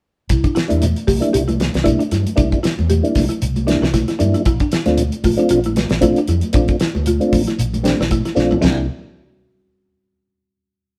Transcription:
0.29 C2 E4, kick, closed hi-hat, shekere
0.44 D4, kick, closed hi-hat, shekere
0.55 E4, muted fingered electric bass stroke, snare, closed hi-hat, shekere
0.68 E2 G3 A#3 D4 E4, closed hi-hat, high conga, shekere
0.82 closed hi-hat, high conga, shekere
0.96 closed hi-hat, shekere
1.07 C2 G4, kick, open hi-hat, high conga, low conga, shekere
1.20 G3 A#3 D4 E4, closed hi-hat, shekere
1.33 C2 G4, closed hi-hat, shekere
1.48 E4, closed hi-hat, high conga, low conga, shekere
1.60 snare, closed hi-hat, high conga, shekere
1.74 C2, snare, closed hi-hat, shekere
1.84 G3 A#3 D4 E4, kick, closed hi-hat, high conga, shekere
1.99 D4, closed hi-hat, shekere
2.11 G2 E4, snare, closed hi-hat, low conga, shekere
2.27 closed hi-hat, high conga, shekere
2.36 C2 G3 A#3 D4 E4, kick, closed hi-hat, shekere
2.52 kick, closed hi-hat, shekere
2.63 E4, muted fingered electric bass stroke, snare, closed hi-hat, shekere
2.79 E2, high conga, shekere
2.90 G4, closed hi-hat, high conga, shekere
3.03 G3 A#3 D4 E4, closed hi-hat, shekere
3.15 C2, kick, snare, open hi-hat, high conga, low conga, shekere
3.29 E4, closed hi-hat, shekere
3.42 C2, closed hi-hat, shekere
3.56 closed hi-hat, high conga, shekere
3.67 G3 A#3 D4 E4, snare, closed hi-hat, high conga, shekere
3.82 C2 E4, snare, shekere
3.94 E4, kick, snare, closed hi-hat, high conga, shekere
4.08 E4, snare, closed hi-hat, shekere
4.19 G2 G3 A#3 D4 E4, closed hi-hat, low conga, shekere
4.34 E4, closed hi-hat, high conga, shekere
4.45 A#1 E4, kick, closed hi-hat, shekere
4.60 D4, kick, closed hi-hat, shekere
4.72 E4, muted fingered electric bass stroke, snare, closed hi-hat, shekere
4.86 D2 A3 C4 D4 F4, snare, closed hi-hat, high conga, shekere
4.98 closed hi-hat, high conga, shekere
5.12 closed hi-hat, shekere
5.24 A#1 F4, kick, open hi-hat, high conga, low conga, shekere
5.37 A3 C4 D4 F4, closed hi-hat, shekere
5.49 A#1 F4, closed hi-hat, shekere
5.64 E4, closed hi-hat, high conga, shekere
5.76 snare, closed hi-hat, high conga, shekere
5.90 A#1, snare, closed hi-hat, shekere
6.01 A3 C4 D4 E4 F4, kick, closed hi-hat, high conga, shekere
6.16 D4, closed hi-hat, shekere
6.28 F2 E4, closed hi-hat, low conga, shekere
6.41 closed hi-hat, high conga, shekere
6.53 A#1 A3 C4 D4 F4, kick, closed hi-hat, shekere
6.68 kick, closed hi-hat, shekere
6.80 E4, muted fingered electric bass stroke, snare, closed hi-hat, shekere
6.95 D2, high conga, shekere
7.06 F4, closed hi-hat, high conga, shekere
7.20 A3 C4 D4 F4, closed hi-hat, high conga, shekere
7.33 A#1, kick, open hi-hat, high conga, low conga, shekere
7.47 E4, snare, closed hi-hat, shekere
7.59 A#1, closed hi-hat, shekere
7.74 closed hi-hat, high conga, low conga, shekere
7.83 A3 C4 D4 G4, snare, closed hi-hat, high conga, shekere
8.00 A#1 E4, snare, shekere
8.10 E4, kick, closed hi-hat, high conga, shekere
8.25 E4, snare, closed hi-hat, shekere
8.35 A#1 A3 C4 D4 F4, snare, shekere
8.50 E4, floor tom, low conga, shekere
8.61 C2 G3 A#3 C4 D4 E4, floor tom, china, low conga, shekere
8.65 snare

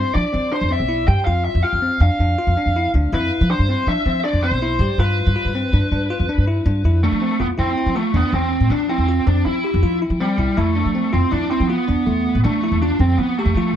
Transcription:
Already playing: C4 C5
0.14 F3 D4 D5
0.33 F3 C4
0.52 D4 C5
0.61 F2
0.71 C4 E5
0.80 B1
0.89 E4
1.08 G2 G4 G5
1.25 F2 F4 F5
1.44 E5
1.55 F2
1.62 F4 F5
1.73 F2
1.82 C4
2.00 F2 D4 F5
2.19 F2 D4
2.38 F4
2.47 F2
2.57 D4
2.66 F2
2.76 E4
2.94 D2 D4
3.12 F2 E4 B4
3.41 F3
3.50 D4 C5
3.59 G2
3.69 C4
3.87 F3 D4 E5
4.06 F3 C4
4.24 D4 D5
4.33 F2
4.43 C4 C5
4.51 B1
4.62 E4
4.79 G2 G4
4.98 G2 F4 B4
5.27 G2
5.36 F4
5.45 G2
5.55 C4
5.73 G2 D4
5.91 G2 D4
6.10 F4
6.20 F2
6.29 D4
6.38 G2
6.47 E4
6.66 G2 D4
6.84 F2 E4
7.03 A3 D4
7.12 F3
7.22 C4
7.40 F2 B3 F4
7.58 F2 C4 E4
7.77 E4
7.86 F3
7.96 A3 F4
8.14 E2 B3 D4
8.33 E2 C4
8.60 A2
8.70 F3 D4
8.89 C4 E4
8.98 E2
9.09 F4
9.27 F2 C4 D4
9.45 F3 E4
9.64 G4
9.74 F2
9.83 F3 F4
10.02 E4
10.10 F3
10.20 G3 C4
10.38 C2 E4
10.57 F2 A3 E4
10.76 D4
10.86 F3
10.95 C4
11.13 F2 C4 F4
11.31 F2 D4 E4
11.50 C4 E4
11.60 F3
11.68 B3 F4
11.88 E2 D4
12.06 E2 A3
12.35 A2
12.44 F3 A3 D4
12.63 E4
12.72 E2
12.82 D4 F4
12.99 F2 C4
13.18 F3 B3
13.38 A3 G4
13.45 F2
13.55 F3 F4

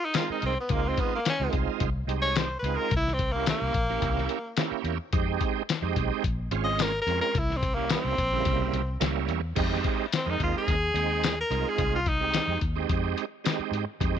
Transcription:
0.05 D#4
0.14 G#3 C4 D#4 F4 A#4, snare, closed hi-hat, tambourine
0.30 D#4, muted fingered electric bass stroke
0.42 C2 C4, closed hi-hat
0.60 B3
0.69 C#2 G#3 A#3 C4 D#4 F4, kick, closed hi-hat
0.88 C4
0.97 B3, kick, closed hi-hat
1.16 A#3
1.25 snare, closed hi-hat, tambourine
1.29 C#4
1.40 C#2 G#3 C4 D#4 F4
1.53 C2, kick, closed hi-hat
1.80 C2, kick, closed hi-hat
2.07 C2 G#3 C4 D#4 G4, closed hi-hat
2.22 C#5
2.36 C5, snare, closed hi-hat, tambourine
2.59 C#2 B4
2.64 G#3 C4 D#4 F4, closed hi-hat
2.76 A#4
2.91 C2, kick, closed hi-hat
2.97 E4
3.07 snare
3.14 C4
3.19 kick, closed hi-hat
3.32 A#3 C#4 E4 G4
3.46 A#3, snare, closed hi-hat, tambourine
3.62 C2
3.74 A#1, kick, closed hi-hat
3.89 A#3 C#4 E4 G4
4.02 C2, kick, closed hi-hat
4.18 snare
4.29 closed hi-hat
4.57 A#3 C#4 E4 G4, snare, closed hi-hat, tambourine
4.71 muted fingered electric bass stroke
4.84 E2, closed hi-hat
5.13 F2 G#3 C4 D#4 G4, kick, closed hi-hat
5.41 kick, closed hi-hat
5.69 snare, closed hi-hat, tambourine
5.82 F2 G#3 C4 D#4 G4
5.96 B1, kick, closed hi-hat
6.24 A#1, kick, closed hi-hat
6.51 G#1 G#3 C4 C#4 F4, closed hi-hat
6.64 D#5
6.79 A#4, snare, closed hi-hat, tambourine
7.02 A#4
7.07 F2 G#3 C4 C#4 F4, closed hi-hat
7.21 A#4
7.35 C2 E4, kick, closed hi-hat
7.50 snare
7.57 C4
7.63 kick, closed hi-hat
7.75 G3 A#3 C#4 E4
7.89 C4, snare, closed hi-hat, tambourine
8.05 C2
8.18 A#1, kick, closed hi-hat
8.33 C#3 G3 A#3 E4
8.45 C2, kick, closed hi-hat
8.73 C2, closed hi-hat
9.00 C#2 G3 A#3 C#4 E4, snare, closed hi-hat, tambourine
9.28 E2, closed hi-hat
9.55 F2 G#3 C4 D#4 G4, kick, closed hi-hat, crash
9.73 snare
9.84 kick, closed hi-hat
10.12 C4, snare, closed hi-hat, tambourine
10.26 F2 G#3 C4 D#4 A#4
10.30 D#4
10.40 D#2 F4, kick, closed hi-hat
10.58 G#4
10.68 D#2, kick, closed hi-hat
10.94 D#2 G#3 C4 D#4 G5, closed hi-hat
11.23 snare, closed hi-hat, tambourine
11.41 A#4
11.50 C2 G#3 C4 D#4 F4, closed hi-hat
11.69 G#4
11.78 C2, kick, closed hi-hat
11.95 F4
12.06 D#4, kick, closed hi-hat
12.21 G#3 C4 D#4 G4
12.34 snare, closed hi-hat, tambourine
12.48 F2
12.61 D#2, kick, closed hi-hat
12.76 G#3 C4 D#4 G4
12.89 F2, kick, closed hi-hat
13.18 closed hi-hat
13.44 G#3 C4 D#4 G4, snare, closed hi-hat, tambourine
13.59 muted fingered electric bass stroke
13.71 G#2, closed hi-hat
14.00 F2 G#3 C4 D#4 G4, kick, closed hi-hat

